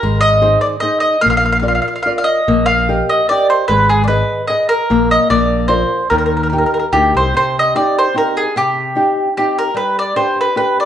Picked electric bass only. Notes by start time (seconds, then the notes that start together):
0.03 G#1
1.26 A#1
2.48 A#1
3.69 G#1
4.91 A#1
5.31 A#1
6.11 D#2
6.93 D2
7.14 C2